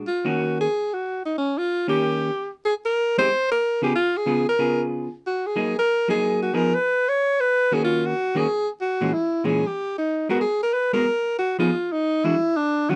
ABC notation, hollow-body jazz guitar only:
X:1
M:4/4
L:1/8
Q:"Swing" 1/4=185
K:Ebm
V:1 name="Hollow-body jazz guitar"
z [E,B,DG]3 z4 | z3 [E,B,D=G]3 z2 | z3 [A,=CE=G] z3 [D,_CFA] | z2 [D,CFA] z [D,CFA]3 z |
z2 [G,B,EA] z2 [G,B,EA]3 | [F,CEA] z6 [^D,^A,^C^F]- | [^D,^A,^C^F]2 z [E,B,_DG] z3 [B,,_F,_A,D] | z2 [B,,_F,A,D] z4 [A,CGB] |
z3 [A,CGB] z3 [F,CEA] | z3 [=E,^G,=D^F] z3 [_E,_G,_D=F] |]